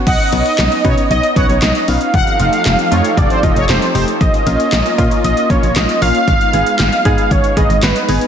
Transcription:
0.07 B1 B3 C#4 D#4 D#5 F#5, kick, closed hi-hat, crash
0.20 closed hi-hat
0.32 B1 B3 C#4 D#4, closed hi-hat
0.46 D#5, closed hi-hat
0.59 B1, snare, clap, closed hi-hat
0.72 closed hi-hat
0.84 B2 B3 C#4 D#4 C#5, kick, closed hi-hat
0.98 closed hi-hat
1.10 B1 D#5, closed hi-hat
1.23 closed hi-hat
1.36 B1 B3 C#4 D#4 C#5 F#5, kick, closed hi-hat
1.49 B1, closed hi-hat
1.62 B1 D#5, snare, clap, closed hi-hat
1.75 closed hi-hat
1.88 B1 B3 C#4 D#4 F5, open hi-hat
2.01 closed hi-hat
2.14 F1 F3 C4 G4 A4 F#5, kick, closed hi-hat
2.27 closed hi-hat
2.40 F1 A3 D#4 F4, closed hi-hat
2.53 F5, closed hi-hat
2.66 F1, snare, clap, closed hi-hat
2.79 closed hi-hat
2.91 F2 A3 D#4 F4 C#5, closed hi-hat
3.05 closed hi-hat
3.17 F1 D5, kick, closed hi-hat
3.30 C5, closed hi-hat
3.43 F1 A3 D#4 F4 D#5, kick, closed hi-hat
3.56 F1 C#5, closed hi-hat
3.69 F1 C5, snare, clap, closed hi-hat
3.82 closed hi-hat
3.95 F1 A3 D#4 G4 C5, open hi-hat
4.08 closed hi-hat
4.21 A#1 A#3 C#4 F4 D#5, kick, closed hi-hat
4.34 closed hi-hat
4.47 A#1 A#3 C#4 F4, closed hi-hat
4.60 closed hi-hat
4.72 A#1, snare, clap, closed hi-hat
4.86 closed hi-hat
4.98 A#2 A#3 C#4 F4, kick, closed hi-hat
5.11 closed hi-hat
5.24 A#1 D#5, closed hi-hat
5.37 closed hi-hat
5.50 A#1 A#3 C#4 F4 C#5, kick, closed hi-hat
5.63 A#1, closed hi-hat
5.76 A#1 D#5, snare, clap, closed hi-hat
5.89 closed hi-hat
6.02 A#1 A#3 C#4 F4 F5, open hi-hat
6.15 closed hi-hat
6.28 G#1 G#3 B3 D#4, kick, closed hi-hat
6.41 closed hi-hat
6.53 G#1 B3 D#4 G#4, closed hi-hat
6.66 closed hi-hat
6.79 G#1, snare, clap, closed hi-hat
6.92 closed hi-hat
7.05 G#2 B3 D#4 G#4, kick, closed hi-hat
7.18 closed hi-hat
7.31 G#1 C#5, kick, closed hi-hat
7.44 closed hi-hat
7.57 G#1 B3 D#4 G#4 D#5, kick, closed hi-hat
7.70 G#1, closed hi-hat
7.83 G#1 B4, snare, clap, closed hi-hat
7.96 closed hi-hat
8.09 G#1 B3 D#4 G#4, open hi-hat
8.21 closed hi-hat

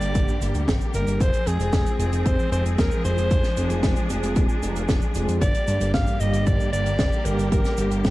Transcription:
Already playing: G2 D3 G3 A#3 D4 G4 D5
0.01 G1, closed hi-hat, cabasa
0.15 G1, kick, closed hi-hat, cabasa
0.28 cabasa
0.41 G1 G2 G3 A#3 D4 A#4, closed hi-hat, cabasa
0.55 D2, closed hi-hat, cabasa
0.68 G1, kick, snare, closed hi-hat, cabasa
0.81 cabasa
0.94 G1 G3 A#3 D4 G4 A#4, closed hi-hat, cabasa
1.07 G1, closed hi-hat, cabasa
1.20 F1 F3 G#3 C4 G#4 C5, kick, closed hi-hat, cabasa
1.33 closed hi-hat, cabasa
1.47 F2 G#3 C4 F4 G#4, closed hi-hat, cabasa
1.60 F1, closed hi-hat, cabasa
1.73 F1, kick, snare, closed hi-hat, cabasa
1.86 closed hi-hat, cabasa
1.99 F1 G#3 C4 F4 G#4, closed hi-hat, cabasa
2.12 F1, closed hi-hat, cabasa
2.25 F1 C5, kick, closed hi-hat, cabasa
2.39 cabasa
2.52 F1 G#3 C4 F4 A#4 C5, closed hi-hat, cabasa
2.65 F1, closed hi-hat, cabasa
2.78 D#1 A#4, kick, snare, closed hi-hat, cabasa
2.91 cabasa
3.04 F1 G#3 C4 F4 G#4 C5, closed hi-hat, cabasa
3.18 F1, closed hi-hat, cabasa
3.31 F1 D4, kick, closed hi-hat, cabasa
3.43 snare, closed hi-hat, cabasa
3.57 F1 G#3 C4 F4 G#4, closed hi-hat, cabasa
3.70 F1, closed hi-hat, cabasa
3.83 F1, kick, snare, closed hi-hat, cabasa
3.96 closed hi-hat, cabasa
4.10 F1 G#3 C4 F4 G#4, closed hi-hat, cabasa
4.23 F1, closed hi-hat, cabasa
4.36 D#1, kick, closed hi-hat, cabasa
4.49 cabasa
4.62 F1 G#3 C4 F4 A#4, closed hi-hat, cabasa
4.76 F1, closed hi-hat, cabasa
4.89 F1, kick, snare, closed hi-hat, cabasa
5.02 cabasa
5.14 F1 G#3 C4 F4 G#4, closed hi-hat, cabasa
5.28 F2, closed hi-hat, cabasa
5.41 G1 D3 G3 A#3 G4 D5, kick, closed hi-hat, cabasa
5.54 closed hi-hat, cabasa
5.68 G2 G3 A#3 D4 G4, closed hi-hat, cabasa
5.81 G1, closed hi-hat, cabasa
5.94 G1 F5, kick, snare, closed hi-hat, cabasa
6.07 closed hi-hat, cabasa
6.20 G1 G2 G3 A#3 D4 G4 D#5, closed hi-hat, cabasa
6.33 G1, closed hi-hat, cabasa
6.46 G1 D5, kick, closed hi-hat, cabasa
6.60 cabasa
6.73 G1 G2 G3 A#3 D4 A#4 D5, closed hi-hat, cabasa
6.86 G1, closed hi-hat, cabasa
6.99 F1, kick, snare, closed hi-hat, cabasa
7.13 cabasa
7.25 G1 G2 G3 A#3 D4 G4 A#4, closed hi-hat, cabasa
7.39 G1, closed hi-hat, cabasa
7.52 G1 A#4, kick, closed hi-hat, cabasa
7.65 snare, closed hi-hat, cabasa
7.77 G1 G2 G3 A#3 D4 G4, closed hi-hat, cabasa
7.91 G1, closed hi-hat, cabasa
8.04 G1, kick, snare, closed hi-hat, cabasa

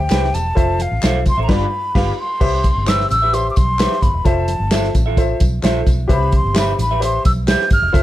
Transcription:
Already playing: G5
0.10 C2 G4 B4 C5 E5, snare, clap, closed hi-hat, tambourine, high conga
0.24 snare
0.33 E1 A5, closed hi-hat, tambourine, muted conga, high conga, low conga
0.55 F1 F4 A4 C5 E5, kick, closed hi-hat, low conga
0.79 F5, closed hi-hat, muted conga, high conga
0.92 A1
1.02 B1 F4 A4 C5 E5, snare, clap, closed hi-hat, tambourine, muted conga, high conga
1.26 C6, kick, closed hi-hat, tambourine, muted conga, high conga, low conga
1.38 A1 A4 C5 E5
1.43 A#5
1.48 G1 G2 F4 G4 B4 D5 F5, kick, snare, crash
1.53 B5
1.94 G1 F4 G4 B4 F5, kick, snare, crash
2.19 C6
2.40 C2 C3 G4 B4 C5 E5, kick, crash, muted conga, low conga
2.63 kick, closed hi-hat, tambourine, high conga
2.76 G1
2.87 G4 B4 C5 E5 E6, snare, clap, closed hi-hat, tambourine, muted conga, high conga
3.01 snare
3.10 A1 E6, closed hi-hat, tambourine, high conga, low conga
3.22 G4 B4 E5
3.33 G4 B4 C5 E5 C6, closed hi-hat, tambourine, muted conga
3.51 D6
3.56 B1 C6, kick, closed hi-hat, tambourine, muted conga, high conga
3.79 G4 B4 C5 E5, snare, clap, closed hi-hat, tambourine, muted conga, high conga
3.92 snare
4.02 G1 B5, kick, closed hi-hat, tambourine, muted conga, high conga
4.14 E1
4.24 F1 F4 A4 C5 E5 A5, kick, closed hi-hat, muted conga, low conga
4.48 closed hi-hat, muted conga, high conga
4.60 G1
4.71 F4 A4 C5 E5, snare, clap, closed hi-hat, tambourine, muted conga, high conga
4.84 snare
4.95 A1, kick, closed hi-hat, tambourine, muted conga, high conga, low conga
5.06 F4 A4 E5
5.17 F4 A4 C5 E5, kick, closed hi-hat, tambourine, muted conga
5.40 B1, kick, closed hi-hat, tambourine, muted conga, high conga
5.62 A#1 F4 A4 C5 E5, snare, clap, closed hi-hat, tambourine, muted conga, high conga
5.86 B1, kick, closed hi-hat, tambourine, muted conga, high conga
6.08 C2 C3 G4 B4 C5 E5, kick, closed hi-hat, tambourine, muted conga, low conga
6.13 B5
6.32 kick, closed hi-hat, muted conga, high conga
6.36 C6
6.44 G1
6.54 G4 B4 C5 E5, snare, clap, closed hi-hat, tambourine, high conga
6.58 E5 B5
6.79 A1 B5, closed hi-hat, tambourine, muted conga, high conga, low conga
6.91 G4 B4 E5
7.00 G4 B4 C5 E5, closed hi-hat, tambourine, muted conga
7.04 C6
7.25 B1 E6, kick, closed hi-hat, tambourine, muted conga, high conga
7.47 G4 B4 C5 E5 G6, snare, clap, closed hi-hat, tambourine, muted conga, high conga
7.61 snare
7.70 G1 F6, kick, closed hi-hat, tambourine, muted conga, high conga
7.82 E1
7.92 F1 F4 A4 C5 E5, kick, closed hi-hat, tambourine, muted conga, low conga

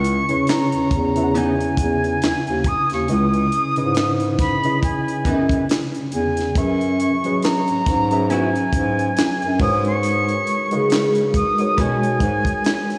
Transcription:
Already playing: C#2 C#3 C#4 E4 B4 D#5 C#6
0.04 closed hi-hat
0.29 E2 C#3 C#4 E4 B4 C#5, closed hi-hat
0.47 A#5, snare, clap, closed hi-hat
0.72 E2, closed hi-hat
0.91 E2, kick, closed hi-hat
1.15 C#3 C#4 E4 B4 E5, closed hi-hat
1.24 F#5
1.35 E3 B3 D#4 G#5, closed hi-hat
1.61 closed hi-hat
1.77 E2, kick, closed hi-hat
2.04 closed hi-hat
2.22 D#2, snare, clap, closed hi-hat
2.47 D#2, closed hi-hat
2.64 D#6, kick, closed hi-hat
2.90 D#2 C#6, snare, closed hi-hat
3.08 C#2 C#3 C#4 E4 B4 D#5 D#6, closed hi-hat
3.34 closed hi-hat
3.52 closed hi-hat
3.76 G#2 C#3 C#4 D#4 B4 D#5, closed hi-hat
3.84 E4
3.95 snare, clap, closed hi-hat
4.20 closed hi-hat
4.39 B5, kick, snare, closed hi-hat
4.63 C#3 C#4 E4 B4 D#5, closed hi-hat
4.82 G#5, muted hollow-body jazz guitar stroke, kick, closed hi-hat
5.08 closed hi-hat
5.25 F#2 E3 B3 D#4, kick, closed hi-hat
5.49 kick, closed hi-hat
5.69 snare, clap, closed hi-hat
5.95 closed hi-hat
6.12 E2 G#5, closed hi-hat
6.37 snare, closed hi-hat
6.55 F#2 F#3 C#4 G#4 B4 E5 C#6, kick, closed hi-hat
6.81 closed hi-hat
7.00 closed hi-hat
7.24 G#2 F#3 C#4 G#4 B4 D#5, closed hi-hat
7.42 A#5, snare, clap, closed hi-hat
7.68 G#2, closed hi-hat
7.86 G#2, kick, snare, closed hi-hat
8.11 F#3 C#4 G#4 B4 E5, closed hi-hat
8.30 B3 E4 F#4 G#5, closed hi-hat
8.56 closed hi-hat
8.73 G#2, kick, closed hi-hat
8.99 closed hi-hat
9.17 F#2, snare, clap, closed hi-hat
9.42 F#2, closed hi-hat
9.59 G#2 G#3 D#4 F#4 A#4 B4 C#5 D#6, kick, open hi-hat
9.85 C#6, closed hi-hat
10.03 closed hi-hat
10.28 closed hi-hat
10.47 closed hi-hat
10.71 C#3 G#3 D#4 F#4 A#4 B4 D#5, closed hi-hat
10.90 snare, clap, closed hi-hat
11.15 closed hi-hat
11.34 D#6, kick, closed hi-hat
11.58 G#3 D#4 F#4 A#4 B4 C#5, closed hi-hat
11.77 B2 B3 C#4 F#4 G#5, kick, closed hi-hat
12.03 closed hi-hat
12.20 G#2, kick, closed hi-hat
12.45 kick, closed hi-hat
12.64 snare, clap, closed hi-hat
12.90 closed hi-hat

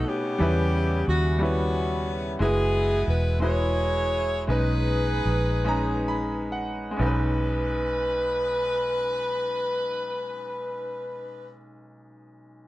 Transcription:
Already playing: B2 A3 D#4 F#4 B4
0.07 B3 C#4 G4
0.39 E2 C#3 G3 C#4 E4 B4
1.08 D#2 F#4
1.39 G3 C#4 E4 F#4
1.43 B3 C#4 B4
2.39 F#1 G#3 E4 F#4 G#4 B4
2.43 B3
3.08 E1 B4
3.40 G#3 E4 F#4 G#4 C#5
3.44 B4
4.47 B1 G#3 B3 C#4 D#4 B4
4.52 D#4 G#4
5.25 A#1
5.65 G#3 C#4 D#4 A#5
6.08 B5
6.52 F#5
6.91 G#3
6.96 B1 C#4
7.00 D#4 B4
7.07 B4

